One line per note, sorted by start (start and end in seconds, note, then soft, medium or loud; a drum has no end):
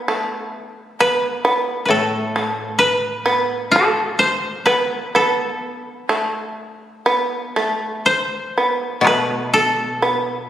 0.00 0.53 F3 soft
0.08 1.00 A3 medium
1.00 1.44 B3 medium
1.00 1.85 B4 medium
1.45 2.35 B3 medium
1.85 4.65 A2 soft
1.85 2.78 B4 soft
1.90 3.71 A4 medium
2.36 3.25 A3 medium
2.79 4.25 B4 medium
3.26 3.72 B3 medium
3.71 5.15 A4 medium
3.76 4.66 A3 medium
4.19 4.72 C5 medium
4.66 5.14 B3 medium
4.66 6.43 B4 medium
5.15 6.09 B3 medium
5.15 8.02 A4 medium
6.09 7.04 A3 medium
7.06 7.55 B3 medium
7.56 8.56 A3 medium
8.06 9.13 C5 medium
8.58 9.05 B3 soft
9.01 10.49 B2 soft
9.01 taiko rim medium
9.07 10.02 A3 medium
9.07 10.49 B4 medium
9.54 10.17 A4 medium
10.02 10.49 B3 medium
10.17 10.49 F4 medium